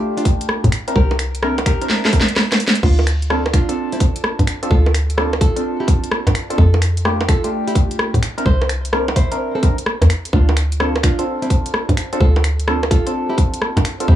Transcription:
Already playing: synth stab A3 D4 F4 G4
0.17 nylon-string guitar D4 F4, open hi-hat
0.25 kick, open hi-hat
0.41 closed hi-hat
0.49 cross-stick
0.64 fm bass A2, kick, closed hi-hat
0.72 finger snap, open hi-hat
0.88 synth stab C4 D4 E4 A#4, closed hi-hat
0.95 fm bass C2, nylon-string guitar G4 A#4, kick
1.11 high bongo
1.19 finger snap, open hi-hat
1.35 closed hi-hat
1.42 synth stab C4 D4 E4 A#4, cross-stick
1.58 closed hi-hat, high bongo
1.66 fm bass A#1, nylon-string guitar G4 A#4, finger snap, kick, open hi-hat
1.81 synth stab C4 D4 E4 A#4, closed hi-hat
1.90 snare
2.05 nylon-string guitar C4 A4, snare
2.13 synth stab C4 D4 E4 A#4, kick, open hi-hat
2.21 snare
2.28 closed hi-hat
2.36 cross-stick, snare
2.52 snare, closed hi-hat, high bongo
2.60 open hi-hat
2.68 snare
2.75 closed hi-hat
2.83 fm bass D2, nylon-string guitar D4 F4, kick, crash
2.99 high bongo
3.07 finger snap, open hi-hat
3.22 closed hi-hat
3.30 synth stab C4 D4 F4 A4, cross-stick
3.46 high bongo
3.53 fm bass C2, nylon-string guitar D4 F4, finger snap, kick, open hi-hat
3.69 synth stab C4 D4 F4 A4, closed hi-hat
3.92 nylon-string guitar C4 E4, open hi-hat
4.00 kick, open hi-hat
4.16 closed hi-hat
4.24 cross-stick
4.39 fm bass G2, kick, closed hi-hat
4.47 finger snap, open hi-hat
4.63 synth stab C4 D4 F4 A4, closed hi-hat
4.71 fm bass D2, nylon-string guitar F4 A4, kick
4.86 high bongo
4.95 finger snap, open hi-hat
5.10 closed hi-hat
5.18 synth stab C4 D4 F4 A4, cross-stick
5.33 high bongo
5.41 fm bass C2, nylon-string guitar F4 A4, kick, open hi-hat
5.56 synth stab C4 D4 F4 A4, closed hi-hat
5.80 nylon-string guitar E4 G4
5.88 kick, open hi-hat
6.04 closed hi-hat
6.11 cross-stick
6.27 fm bass G2, kick, closed hi-hat, high bongo
6.35 finger snap, open hi-hat
6.50 synth stab C4 D4 F4 A4, closed hi-hat
6.58 fm bass F2, nylon-string guitar F4 A4, kick
6.74 high bongo
6.82 finger snap, open hi-hat
6.97 closed hi-hat
7.05 synth stab A3 D4 F4 G4, cross-stick
7.21 high bongo
7.28 fm bass D2, nylon-string guitar F4 A4, finger snap, kick, open hi-hat
7.44 synth stab A3 D4 F4 G4, closed hi-hat
7.67 nylon-string guitar E4 G4, open hi-hat
7.75 kick, open hi-hat
7.91 closed hi-hat
7.99 cross-stick
8.14 fm bass A2, kick, closed hi-hat
8.23 finger snap, open hi-hat
8.38 synth stab C4 D4 E4 A#4, closed hi-hat
8.46 fm bass C2, nylon-string guitar E4 C5, kick
8.62 high bongo
8.69 finger snap, open hi-hat
8.85 closed hi-hat
8.93 synth stab C4 D4 E4 A#4, cross-stick
9.08 high bongo
9.16 fm bass A#1, nylon-string guitar E4 C5, kick, open hi-hat
9.31 synth stab C4 D4 E4 A#4, closed hi-hat
9.55 nylon-string guitar C4 A4
9.63 synth stab C4 D4 E4 A#4, kick, open hi-hat
9.78 closed hi-hat
9.86 cross-stick
10.02 fm bass E2, kick, closed hi-hat, high bongo
10.10 finger snap, open hi-hat
10.25 closed hi-hat
10.33 fm bass D2, nylon-string guitar D4 F4, kick
10.49 high bongo
10.57 finger snap, open hi-hat
10.72 closed hi-hat
10.80 synth stab C4 D4 F4 A4, cross-stick
10.96 high bongo
11.03 fm bass C2, nylon-string guitar D4 F4, finger snap, kick, open hi-hat
11.19 synth stab C4 D4 F4 A4, closed hi-hat
11.42 nylon-string guitar C4 E4, open hi-hat
11.50 kick, open hi-hat
11.66 closed hi-hat
11.74 cross-stick
11.89 fm bass G2, kick, closed hi-hat
11.97 finger snap, open hi-hat
12.13 synth stab C4 D4 F4 A4, closed hi-hat
12.20 fm bass D2, nylon-string guitar F4 A4, kick
12.36 high bongo
12.44 finger snap, open hi-hat
12.60 closed hi-hat
12.68 synth stab C4 D4 F4 A4, cross-stick
12.83 high bongo
12.91 fm bass C2, nylon-string guitar F4 A4, kick, open hi-hat
13.06 synth stab C4 D4 F4 A4, closed hi-hat
13.29 nylon-string guitar E4 G4
13.38 kick, open hi-hat
13.54 closed hi-hat
13.62 cross-stick
13.77 fm bass G2, kick, closed hi-hat, high bongo
13.85 finger snap, open hi-hat
14.00 synth stab C4 D4 F4 A4, closed hi-hat
14.08 fm bass F2, nylon-string guitar E4 G4, kick

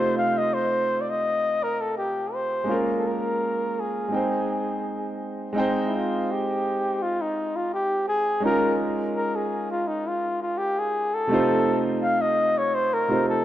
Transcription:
Already playing: grand piano C3 A3 C4 D#4 F4 C5, flugelhorn C5
0.18 flugelhorn F5
0.38 flugelhorn D#5
0.54 flugelhorn C5
1.01 flugelhorn D5
1.10 flugelhorn D#5
1.63 flugelhorn A#4
1.81 flugelhorn A4
1.97 flugelhorn G4
2.34 flugelhorn C5
2.64 grand piano G#3 A#3
2.68 grand piano C#4 F4 A#4
2.99 flugelhorn A4
3.07 flugelhorn A#4
3.80 flugelhorn G#4
4.08 grand piano G#3 C4 D#4
4.14 grand piano C5 G5
5.53 grand piano G#3 C4 D#4
5.58 grand piano C5 G5
5.87 flugelhorn E4
5.96 flugelhorn F4
6.32 flugelhorn G4
7.02 flugelhorn F4
7.21 flugelhorn D#4
7.56 flugelhorn F4
7.73 flugelhorn G4
8.08 flugelhorn G#4
8.40 grand piano G#3 C#4 D#4
8.45 grand piano F4 A#4, flugelhorn A#4
9.16 flugelhorn A#4
9.36 flugelhorn G#4
9.71 flugelhorn F4
9.87 flugelhorn D#4
10.07 flugelhorn F4
10.42 flugelhorn F4
10.58 flugelhorn G4
10.79 flugelhorn G#4
11.14 flugelhorn A4
11.27 grand piano C3 A3 C4
11.32 grand piano D#4 F4 C5
12.02 flugelhorn F5
12.21 flugelhorn D#5
12.58 flugelhorn C#5
12.74 flugelhorn C5
12.94 flugelhorn A#4
13.08 grand piano C3 A3 C4 D#4 F4 C5
13.29 flugelhorn A4

